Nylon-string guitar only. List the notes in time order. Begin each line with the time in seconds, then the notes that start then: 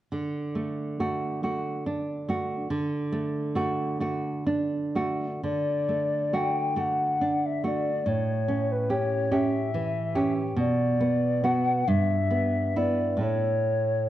0.12 D3
0.55 A3
1.00 A3 F#4
1.43 A3 F#4
1.86 D4
2.29 A3 F#4
2.70 D3
3.12 A3
3.55 A3 F#4
4.00 A3 F#4
4.46 D4
4.95 A3 F#4
5.43 D3
5.89 A3
6.33 A3 F#4
6.76 A3 F#4
7.21 D4
7.64 A3 F#4
8.06 A2
8.48 C#4
8.90 C#4 G4
9.32 C#4 G4
9.74 E3
10.15 C#4 G4
10.57 B2
11.00 B3
11.44 B3 F#4
11.88 G2
12.31 B3
12.76 B3 E4
13.17 A2 A3 E4